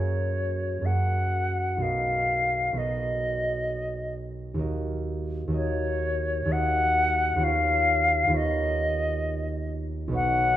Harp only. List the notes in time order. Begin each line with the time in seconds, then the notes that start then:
Already playing: F#2 A#3 F#4 G#4 A#4
0.81 F#2 A#3 F#4
0.85 G#4 A#4
1.77 B1 B3 F#4
1.82 A#4 D#5
2.73 B1 B3 F#4
2.77 A#4 D#5
4.54 D#2 A#3 F#4
4.59 A#4 D#5
5.48 D#2 A#3 F#4
5.52 A#4 D#5
6.45 D#2 A#3 F#4
6.50 A#4 D#5
7.36 D#2 B3 F4
7.41 A#4 C#5
8.28 D#2 B3 F4
8.32 A#4 C#5
10.08 B1 B3 D#4
10.12 B4 C#5